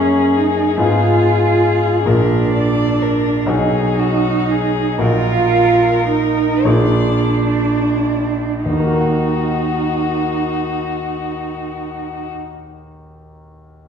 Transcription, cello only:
0, 0, Header, 1, 2, 480
1, 0, Start_track
1, 0, Key_signature, -6, "minor"
1, 0, Tempo, 848656
1, 1170, Time_signature, 6, 3, 24, 8
1, 1171, Tempo, 931677
1, 1651, Tempo, 972447
1, 2131, Tempo, 1032702
1, 2611, Tempo, 1084991
1, 3091, Tempo, 1197605
1, 3571, Tempo, 1376147
1, 4051, Tempo, 1315789
1, 5953, End_track
2, 0, Start_track
2, 0, Title_t, "Cello"
2, 0, Program_c, 0, 42
2, 0, Note_on_c, 0, 61, 60
2, 208, Note_on_c, 0, 63, 49
2, 217, Note_off_c, 0, 61, 0
2, 437, Note_on_c, 0, 65, 61
2, 446, Note_off_c, 0, 63, 0
2, 1162, Note_off_c, 0, 65, 0
2, 1165, Note_on_c, 0, 62, 70
2, 1887, Note_on_c, 0, 63, 65
2, 1894, Note_off_c, 0, 62, 0
2, 2605, Note_on_c, 0, 65, 75
2, 2612, Note_off_c, 0, 63, 0
2, 3082, Note_off_c, 0, 65, 0
2, 3085, Note_on_c, 0, 63, 69
2, 3320, Note_on_c, 0, 62, 62
2, 3326, Note_off_c, 0, 63, 0
2, 4048, Note_off_c, 0, 62, 0
2, 4051, Note_on_c, 0, 63, 48
2, 5372, Note_off_c, 0, 63, 0
2, 5953, End_track
0, 0, End_of_file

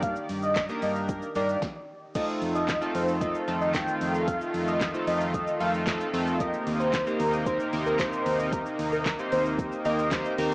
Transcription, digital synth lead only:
0, 0, Header, 1, 2, 480
1, 0, Start_track
1, 0, Tempo, 530973
1, 25, Time_signature, 4, 2, 24, 8
1, 9532, End_track
2, 0, Start_track
2, 0, Title_t, "Digital synth lead"
2, 0, Program_c, 0, 84
2, 27, Note_on_c, 0, 77, 96
2, 125, Note_off_c, 0, 77, 0
2, 387, Note_on_c, 0, 75, 80
2, 584, Note_off_c, 0, 75, 0
2, 749, Note_on_c, 0, 75, 77
2, 846, Note_off_c, 0, 75, 0
2, 1228, Note_on_c, 0, 74, 81
2, 1424, Note_off_c, 0, 74, 0
2, 1945, Note_on_c, 0, 75, 102
2, 2044, Note_off_c, 0, 75, 0
2, 2306, Note_on_c, 0, 75, 77
2, 2503, Note_off_c, 0, 75, 0
2, 2665, Note_on_c, 0, 72, 86
2, 2764, Note_off_c, 0, 72, 0
2, 2902, Note_on_c, 0, 75, 97
2, 3002, Note_off_c, 0, 75, 0
2, 3262, Note_on_c, 0, 75, 72
2, 3362, Note_off_c, 0, 75, 0
2, 3383, Note_on_c, 0, 79, 84
2, 3723, Note_off_c, 0, 79, 0
2, 3865, Note_on_c, 0, 77, 104
2, 3964, Note_off_c, 0, 77, 0
2, 4228, Note_on_c, 0, 75, 82
2, 4424, Note_off_c, 0, 75, 0
2, 4585, Note_on_c, 0, 75, 82
2, 4684, Note_off_c, 0, 75, 0
2, 4826, Note_on_c, 0, 75, 96
2, 5023, Note_off_c, 0, 75, 0
2, 5065, Note_on_c, 0, 77, 89
2, 5164, Note_off_c, 0, 77, 0
2, 5788, Note_on_c, 0, 75, 100
2, 5885, Note_off_c, 0, 75, 0
2, 6143, Note_on_c, 0, 72, 84
2, 6342, Note_off_c, 0, 72, 0
2, 6507, Note_on_c, 0, 70, 83
2, 6605, Note_off_c, 0, 70, 0
2, 6745, Note_on_c, 0, 72, 87
2, 6844, Note_off_c, 0, 72, 0
2, 7107, Note_on_c, 0, 70, 76
2, 7205, Note_off_c, 0, 70, 0
2, 7227, Note_on_c, 0, 72, 87
2, 7565, Note_off_c, 0, 72, 0
2, 7709, Note_on_c, 0, 70, 91
2, 7807, Note_off_c, 0, 70, 0
2, 8067, Note_on_c, 0, 70, 79
2, 8264, Note_off_c, 0, 70, 0
2, 8428, Note_on_c, 0, 72, 78
2, 8526, Note_off_c, 0, 72, 0
2, 8909, Note_on_c, 0, 75, 79
2, 9105, Note_off_c, 0, 75, 0
2, 9532, End_track
0, 0, End_of_file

